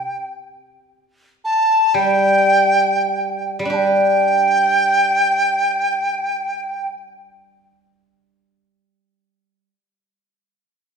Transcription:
0.00 0.26 G5 medium
1.44 1.96 A5 medium
1.94 3.58 G3 soft
1.94 3.52 G5 medium
3.59 9.66 G3 soft
3.65 8.41 D4 soft
3.70 7.70 G4 soft
3.70 3.77 A5 medium
3.76 6.88 G5 medium

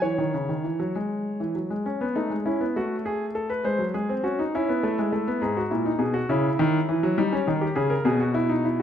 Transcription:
0.02 0.18 E3 medium
0.02 1.51 C#5 medium
0.18 0.33 D#3 medium
0.34 0.49 C#3 soft
0.49 0.64 D#3 soft
0.64 0.79 E3 soft
0.80 0.94 F#3 medium
0.96 1.39 G#3 medium
1.40 1.55 E3 medium
1.55 1.70 F#3 soft
1.70 1.85 G#3 medium
1.86 2.05 C#4 medium
2.01 2.16 B3 medium
2.16 2.31 A3 medium
2.16 2.34 D#4 medium
2.30 2.45 G#3 soft
2.46 2.61 C#4 medium
2.46 2.64 E4 medium
2.60 2.75 B3 medium
2.76 3.63 A3 medium
2.76 2.95 F#4 medium
3.06 3.24 G#4 medium
3.35 3.50 A4 medium
3.50 3.64 B4 medium
3.64 3.79 G#3 medium
3.64 3.83 C5 medium
3.79 3.94 F#3 medium
3.94 4.09 G#3 soft
3.94 4.13 G#4 medium
4.09 4.24 C4 medium
4.24 4.38 C#4 medium
4.24 4.42 F#4 medium
4.39 4.53 D#4 medium
4.55 4.68 C#4 medium
4.55 5.40 E4 medium
4.69 4.83 B3 medium
4.83 4.98 A3 medium
4.99 5.12 G#3 medium
5.12 5.27 A3 medium
5.28 5.42 B3 medium
5.42 5.60 G#2 medium
5.42 5.56 G#4 medium
5.57 5.71 F#4 medium
5.71 5.90 A#2 medium
5.71 5.85 E4 medium
5.86 6.00 D#4 medium
5.99 6.18 B2 medium
5.99 6.14 G#4 medium
6.14 6.29 F#4 medium
6.29 6.48 C#3 medium
6.29 7.16 E4 medium
6.59 6.78 D#3 loud
6.89 7.03 E3 medium
7.03 7.18 F#3 medium
7.18 7.36 G3 medium
7.18 7.33 D#4 medium
7.32 7.47 C#4 medium
7.47 7.66 D#3 medium
7.47 7.62 D#4 medium
7.61 7.76 G4 medium
7.75 7.95 C#3 medium
7.75 7.91 G#4 medium
7.90 8.05 A#4 medium
8.05 8.82 B2 medium
8.05 8.21 G#4 medium
8.20 8.35 F#4 medium
8.34 8.50 E4 medium
8.49 8.65 D#4 medium
8.65 8.80 E4 medium

